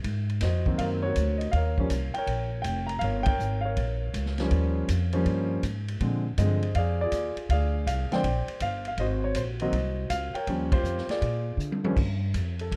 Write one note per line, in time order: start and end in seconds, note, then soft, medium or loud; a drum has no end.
0.04 0.40 G#2 medium
0.04 kick soft
0.04 ride medium
0.30 ride soft
0.41 0.78 F2 medium
0.41 1.04 F#4 medium
0.41 0.80 C5 medium
0.41 0.80 D#5 medium
0.41 kick soft
0.41 snare soft
0.41 hi-hat pedal soft
0.41 ride medium
0.66 1.13 D#3 medium
0.66 1.14 F#3 medium
0.66 1.14 A#3 medium
0.66 1.14 C4 medium
0.66 kick soft
0.78 1.15 F#2 medium
0.78 1.04 A#4 medium
0.78 1.50 C5 medium
0.78 0.84 F5 medium
0.78 kick soft
0.78 ride medium
1.03 1.51 F#4 medium
1.03 1.51 A#4 medium
1.03 1.37 C#5 loud
1.16 1.52 D2 medium
1.16 kick soft
1.16 hi-hat pedal medium
1.16 ride medium
1.38 1.52 D#5 medium
1.38 ride soft
1.52 1.89 D#2 medium
1.52 2.16 F5 medium
1.52 kick soft
1.52 ride medium
1.56 2.17 A#4 medium
1.56 2.17 C#5 medium
1.78 1.90 F3 medium
1.78 1.90 G3 medium
1.78 1.90 A#3 medium
1.78 1.90 C#4 medium
1.78 kick soft
1.90 2.13 C2 medium
1.90 kick soft
1.90 hi-hat pedal medium
1.90 ride medium
2.14 2.87 A#4 medium
2.14 2.49 G5 loud
2.14 muted upright bass stroke soft
2.14 ride soft
2.18 2.87 C#5 medium
2.27 2.63 A#1 medium
2.27 kick soft
2.27 ride medium
2.62 3.00 F1 medium
2.62 2.89 G5 medium
2.62 kick soft
2.62 hi-hat pedal soft
2.62 ride medium
2.87 3.01 A#5 medium
2.87 ride soft
2.99 3.38 G1 loud
2.99 3.26 F5 medium
2.99 kick soft
2.99 ride medium
3.04 3.26 A#4 medium
3.04 3.26 C#5 medium
3.23 3.59 G5 loud
3.23 kick medium
3.23 ride medium
3.27 3.65 A#4 medium
3.27 3.64 C#5 medium
3.39 3.75 G#1 medium
3.39 hi-hat pedal medium
3.61 5.07 F5 medium
3.65 5.10 A#4 medium
3.65 5.10 C#5 medium
3.77 4.13 A#1 medium
3.77 kick soft
3.77 ride medium
4.14 4.50 C#2 medium
4.14 kick soft
4.14 hi-hat pedal soft
4.14 ride medium
4.26 snare soft
4.38 4.87 F3 medium
4.38 4.87 G3 medium
4.38 4.87 A#3 medium
4.38 4.87 C#4 medium
4.38 snare soft
4.38 ride soft
4.51 4.87 D#2 medium
4.51 kick soft
4.51 ride medium
4.88 5.25 F2 medium
4.88 kick soft
4.88 hi-hat pedal medium
4.88 ride medium
5.13 5.60 F3 medium
5.13 5.61 G3 medium
5.13 5.61 A#3 medium
5.13 5.61 C#4 medium
5.13 ride soft
5.26 5.62 G2 medium
5.26 kick soft
5.26 ride medium
5.63 5.99 G#2 medium
5.63 kick soft
5.63 hi-hat pedal medium
5.63 ride medium
5.88 ride soft
6.00 6.36 A#2 medium
6.00 6.23 D3 medium
6.00 6.23 F3 medium
6.00 6.23 G#3 medium
6.00 6.23 C4 medium
6.00 kick soft
6.00 ride medium
6.38 6.74 G2 medium
6.38 6.60 D3 medium
6.38 6.60 F3 medium
6.38 6.60 G#3 medium
6.38 6.60 C4 medium
6.38 6.77 G#4 medium
6.38 7.10 C5 medium
6.38 6.76 D#5 medium
6.38 kick soft
6.38 hi-hat pedal medium
6.38 ride medium
6.62 ride soft
6.75 7.11 F2 medium
6.75 7.02 G#4 medium
6.75 7.00 D5 medium
6.75 7.00 F5 medium
6.75 kick soft
6.75 ride medium
7.01 7.72 F4 medium
7.01 7.51 G#4 medium
7.01 7.35 D5 loud
7.12 7.35 D#2 medium
7.12 kick soft
7.12 hi-hat pedal medium
7.12 ride medium
7.36 muted upright bass stroke soft
7.36 ride soft
7.49 7.85 D2 medium
7.49 8.21 G#4 medium
7.49 8.13 D5 medium
7.49 7.85 F5 medium
7.49 kick soft
7.49 ride medium
7.87 8.10 C2 medium
7.87 8.12 F5 medium
7.87 kick soft
7.87 hi-hat pedal medium
7.87 ride medium
8.11 8.23 D3 medium
8.11 8.23 F3 medium
8.11 8.23 G#3 medium
8.11 8.23 C4 medium
8.11 8.84 D5 medium
8.11 8.47 G5 loud
8.11 muted upright bass stroke soft
8.11 snare soft
8.11 ride soft
8.15 8.84 C5 medium
8.24 8.47 A#1 medium
8.24 kick soft
8.24 ride medium
8.48 muted upright bass stroke soft
8.48 ride soft
8.60 8.97 G1 medium
8.60 8.86 F5 loud
8.60 kick soft
8.60 hi-hat pedal medium
8.60 ride medium
8.85 8.98 F5 medium
8.85 ride soft
8.97 9.34 G#1 medium
8.97 9.61 F#4 medium
8.97 9.35 C5 medium
8.97 9.05 D#5 medium
8.97 kick soft
8.97 ride medium
9.24 9.35 C#5 medium
9.35 9.72 A#1 medium
9.35 9.42 C5 medium
9.35 kick soft
9.35 hi-hat pedal medium
9.35 ride medium
9.59 9.72 D#3 medium
9.59 9.72 F#3 medium
9.59 9.73 A#3 medium
9.59 9.72 C4 medium
9.59 10.32 F#4 medium
9.59 10.32 C5 medium
9.59 10.08 D#5 medium
9.59 ride soft
9.72 10.09 C2 medium
9.72 kick soft
9.72 ride medium
10.10 10.33 C#2 medium
10.10 10.36 F5 loud
10.10 kick soft
10.10 hi-hat pedal medium
10.10 ride medium
10.34 11.06 A#4 medium
10.34 11.06 C#5 medium
10.34 10.69 G5 medium
10.34 muted upright bass stroke soft
10.34 ride soft
10.47 10.82 D#2 medium
10.47 10.70 F3 medium
10.47 10.70 G3 medium
10.47 10.70 A#3 medium
10.47 10.71 C#4 medium
10.47 kick soft
10.47 ride medium
10.72 11.10 F4 medium
10.72 11.20 G4 medium
10.72 11.07 C5 medium
10.72 kick medium
10.72 ride medium
10.83 11.07 F2 medium
10.83 hi-hat pedal medium
10.98 snare soft
11.07 11.81 G#4 medium
11.07 11.57 D5 medium
11.07 muted upright bass stroke soft
11.07 snare soft
11.07 ride soft
11.11 11.81 F4 medium
11.22 11.57 A#2 medium
11.22 kick soft
11.22 ride medium
11.57 11.95 D3 medium
11.57 hi-hat pedal medium
11.72 high tom medium
11.84 11.96 D#2 medium
11.84 11.96 F3 medium
11.84 11.96 G3 medium
11.84 11.96 A#3 medium
11.84 11.96 C#4 medium
11.84 high tom medium
11.96 12.33 G2 medium
11.96 kick medium
11.96 crash medium
12.34 12.71 F2 medium
12.34 kick soft
12.34 hi-hat pedal medium
12.34 ride medium
12.59 12.72 A4 medium
12.59 ride soft
12.72 12.76 C#2 medium
12.72 kick soft
12.72 ride medium